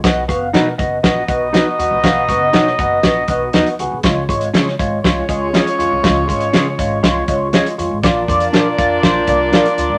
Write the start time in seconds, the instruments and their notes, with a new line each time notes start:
0.04 upright bass B1, tine electric piano B3 F#4 D#5, kick, snare, closed hi-hat
0.28 upright bass F#1, tine electric piano B3 F#4 F5, kick, closed hi-hat
0.53 upright bass B2, tine electric piano B3 F#4 A#4, clean electric guitar D#4 F#4 B4 D#5, snare, closed hi-hat
0.78 upright bass F#1, tine electric piano B3 F#4 D#5, kick, closed hi-hat
1.03 upright bass A#1, tine electric piano B3 F#4 D#5, horn section D#4 F#4 B4 D#5, kick, snare, closed hi-hat
1.28 upright bass B1, tine electric piano B3 F#4 D#5, kick, closed hi-hat
1.53 tine electric piano B3 F#4 D#5, clean electric guitar D#4 F#4 B4 D#5, snare, closed hi-hat
1.78 upright bass D#2, tine electric piano B3 F#4 D#5, closed hi-hat
1.91 upright bass A#1
2.03 upright bass B1, tine electric piano B3 F#4 F5, kick, snare, closed hi-hat
2.28 upright bass F#1, tine electric piano B3 F#4 D#5, kick, closed hi-hat
2.53 upright bass B2, tine electric piano B3 F#4 C#5, clean electric guitar D#4 F#4 B4 D#5, snare, closed hi-hat
2.67 snare
2.79 upright bass F#1, tine electric piano B3 F#4 D#5, kick, closed hi-hat
3.03 upright bass A#1, tine electric piano B3 F#4 D#5, kick, snare, closed hi-hat
3.28 upright bass B1, tine electric piano B3 F#4 D#5, kick, closed hi-hat
3.53 upright bass D#2, tine electric piano B3 F#4 D#5, clean electric guitar D#4 F#4 B4 D#5, snare, closed hi-hat
3.66 closed hi-hat
3.79 upright bass C#2, tine electric piano B3 F#4 G#4, closed hi-hat
3.92 upright bass B1
4.03 upright bass C#2, tine electric piano G#3 F4 C#5, kick, snare, closed hi-hat
4.28 upright bass G#1, tine electric piano G#3 F4 C#5, kick, closed hi-hat
4.41 closed hi-hat
4.54 upright bass C#3, tine electric piano G#3 F4 C#5, clean electric guitar C#4 F4 G#4 C#5, snare, closed hi-hat
4.68 snare
4.79 upright bass G#1, tine electric piano G#3 F4 C#5, kick, closed hi-hat
5.03 upright bass C2, tine electric piano G#3 F4 C#5, horn section C#4 F4 G#4 C#5, kick, snare, closed hi-hat
5.29 upright bass C#2, tine electric piano G#3 F4 G#4, kick, closed hi-hat
5.53 tine electric piano G#3 F4 C#5, clean electric guitar C#4 F4 G#4 C#5, snare, closed hi-hat
5.67 closed hi-hat
5.78 upright bass F2, tine electric piano G#3 F4 C#5, closed hi-hat
5.91 upright bass C2
6.03 upright bass C#2, tine electric piano G#3 F4 C#5, kick, snare, closed hi-hat
6.27 upright bass G#1, tine electric piano G#3 F4 C#5, kick, closed hi-hat
6.40 closed hi-hat
6.53 upright bass C#3, tine electric piano G#3 F4 C#5, clean electric guitar C#4 F4 G#4 C#5, snare, closed hi-hat
6.78 upright bass G#1, tine electric piano G#3 F4 C#5, kick, closed hi-hat
7.03 upright bass C2, tine electric piano G#3 F4 C#5, kick, snare, closed hi-hat
7.28 upright bass C#2, tine electric piano G#3 F4 C#5, kick, closed hi-hat
7.53 tine electric piano G#3 F4 D#5, clean electric guitar C#4 F4 G#4 C#5, snare, closed hi-hat
7.66 closed hi-hat
7.78 upright bass F2, tine electric piano G#3 F4 C#5, closed hi-hat
7.91 upright bass G#1
8.03 upright bass A#1, tine electric piano A#3 F4 D5, horn section D4 F4 A#4 D5, kick, snare, closed hi-hat
8.28 upright bass F2, tine electric piano A#3 F4 D5, kick, closed hi-hat
8.40 closed hi-hat
8.53 upright bass A#2, tine electric piano A#3 F4 D5, clean electric guitar D4 F4 A#4 D5, snare, closed hi-hat
8.78 upright bass F2, tine electric piano A#3 F4 D5, kick, closed hi-hat
9.03 upright bass A#1, tine electric piano A#3 F4 C5, kick, snare, closed hi-hat
9.27 upright bass C2, tine electric piano A#3 F4 D5, kick, closed hi-hat
9.52 tine electric piano A#3 F4 D5, clean electric guitar D4 F4 A#4 D5, snare, closed hi-hat
9.65 closed hi-hat
9.78 upright bass D2, tine electric piano A#3 F4 D5, closed hi-hat
9.90 upright bass G#1